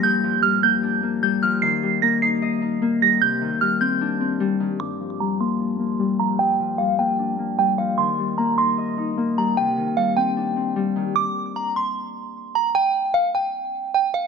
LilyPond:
<<
  \new Staff \with { instrumentName = "Synth bell" } { \time 4/4 \key g \minor \tempo 4 = 151 g'''4 f'''8 g'''4. g'''8 f'''8 | c''''4 bes'''8 c''''2 bes'''8 | g'''4 f'''8 g'''2~ g'''8 | d'''4 bes''8 c'''2 bes''8 |
g''4 f''8 g''4. g''8 f''8 | c'''4 bes''8 c'''2 bes''8 | g''4 f''8 g''2~ g''8 | d'''4 bes''8 c'''2 bes''8 |
g''4 f''8 g''4. g''8 f''8 | }
  \new Staff \with { instrumentName = "Harp" } { \clef bass \time 4/4 \key g \minor <g, f g bes d'>8 f8 g8 bes8 d'8 bes8 g8 f8 | ees8 g8 bes8 ees'8 ees''8 ees'8 bes8 g8 | c8 ees8 g8 c'8 d'8 c'8 g8 ees8 | g,8 f8 g8 bes8 d'8 bes8 g8 f8 |
g,8 f8 g8 bes8 d'8 bes8 g8 f8 | ees8 g8 bes8 ees'8 ees''8 ees'8 bes8 g8 | c8 ees8 g8 c'8 d'8 c'8 g8 ees8 | r1 |
r1 | }
>>